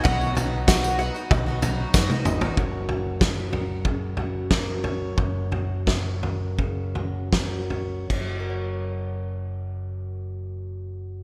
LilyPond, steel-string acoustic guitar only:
\new Staff \with { instrumentName = "Steel-string acoustic guitar" } { \time 4/4 \key fis \major \tempo 4 = 88 << { r1 | <fis fis' ais' cis''>8 fis'4 ais'4 fis'8 ais'8 cis''8 | r8 fis'4 ais'4 fis'8 ais'8 cis''8 | <fis fis' ais' cis''>1 | } \\ { r1 | fis,4 fis4 cis4 fis4 | fis,4 fis4 cis4 fis4 | fis,1 | } >> }